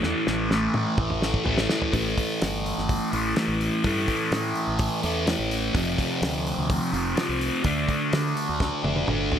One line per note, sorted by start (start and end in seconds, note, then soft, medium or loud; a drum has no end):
0.02 0.13 E2 loud
0.02 0.49 A2 medium
0.02 0.28 E3 loud
0.02 0.25 A3 loud
0.02 snare medium
0.27 0.67 A1 medium
0.27 0.50 E3 medium
0.27 0.52 A3 medium
0.27 snare medium
0.50 0.98 A2 medium
0.50 0.75 E3 medium
0.50 0.72 A3 medium
0.50 snare medium
0.74 0.84 A2 loud
0.74 1.45 E3 medium
0.74 1.46 A3 medium
0.74 mid tom medium
0.98 1.38 A1 medium
0.98 kick loud
0.98 mid tom medium
1.10 mid tom medium
1.22 snare medium
1.34 kick medium
1.45 1.66 A1 medium
1.45 1.91 A2 medium
1.45 1.71 E3 medium
1.45 1.69 A3 loud
1.45 floor tom medium
1.58 snare medium
1.69 1.93 E3 medium
1.69 1.92 A3 medium
1.69 snare loud
1.82 floor tom medium
1.92 2.13 A1 loud
1.92 3.11 A2 medium
1.92 3.12 E3 medium
1.92 3.11 A3 loud
1.92 kick loud
1.92 open hi-hat medium
2.18 kick medium
2.18 open hi-hat medium
2.42 2.72 G1 medium
2.42 snare loud
2.42 open hi-hat medium
2.66 open hi-hat medium
2.78 2.98 G1 medium
2.78 snare soft
2.89 kick loud
2.89 open hi-hat medium
3.11 3.33 A1 medium
3.11 3.35 A2 medium
3.11 3.35 E3 medium
3.11 3.38 A3 medium
3.11 open hi-hat medium
3.36 3.83 A2 medium
3.36 3.83 E3 medium
3.36 3.86 A3 medium
3.36 snare loud
3.36 open hi-hat medium
3.48 3.68 A1 medium
3.61 open hi-hat medium
3.84 4.05 G2 medium
3.84 5.02 A2 medium
3.84 5.03 E3 medium
3.84 5.02 A3 loud
3.84 kick loud
3.84 open hi-hat medium
4.08 kick medium
4.08 open hi-hat medium
4.31 4.52 A2 medium
4.31 snare loud
4.31 open hi-hat medium
4.55 open hi-hat soft
4.67 4.88 A1 medium
4.79 kick loud
4.79 open hi-hat medium
5.03 5.34 E2 medium
5.03 5.25 A2 medium
5.03 5.26 E3 medium
5.03 5.29 A3 medium
5.03 open hi-hat medium
5.26 5.73 A2 medium
5.26 5.74 E3 medium
5.26 7.65 A3 medium
5.26 snare loud
5.26 open hi-hat medium
5.39 5.69 A1 medium
5.51 open hi-hat medium
5.74 5.95 F1 loud
5.74 6.92 F2 medium
5.74 6.93 C3 medium
5.74 6.92 F3 medium
5.74 kick loud
5.74 open hi-hat medium
5.99 kick medium
5.99 open hi-hat medium
6.22 6.52 D2 medium
6.22 snare loud
6.22 open hi-hat medium
6.47 open hi-hat medium
6.58 6.78 D2 medium
6.70 kick loud
6.70 open hi-hat medium
6.93 7.13 F1 medium
6.93 7.15 F2 medium
6.93 7.16 C3 medium
6.93 7.16 F3 medium
6.93 open hi-hat medium
7.16 7.63 F2 medium
7.16 7.63 C3 medium
7.16 7.65 F3 medium
7.16 snare loud
7.16 open hi-hat medium
7.29 7.49 C2 medium
7.41 open hi-hat medium
7.63 7.85 D2 medium
7.63 8.82 D3 medium
7.63 8.84 A3 medium
7.63 8.82 D4 medium
7.63 kick loud
7.63 open hi-hat medium
7.88 kick medium
7.88 open hi-hat medium
8.13 8.33 D3 medium
8.13 snare loud
8.13 open hi-hat medium
8.37 open hi-hat medium
8.49 8.69 D2 medium
8.60 kick loud
8.60 snare medium
8.83 9.05 F1 medium
8.83 9.06 D3 medium
8.83 9.08 A3 medium
8.83 9.06 D4 medium
8.83 high tom medium
8.96 high tom medium
9.07 9.30 G1 medium
9.07 9.39 D3 medium
9.07 9.39 A3 medium
9.07 9.39 D4 medium
9.07 mid tom medium
9.32 9.39 A1 medium
9.32 floor tom medium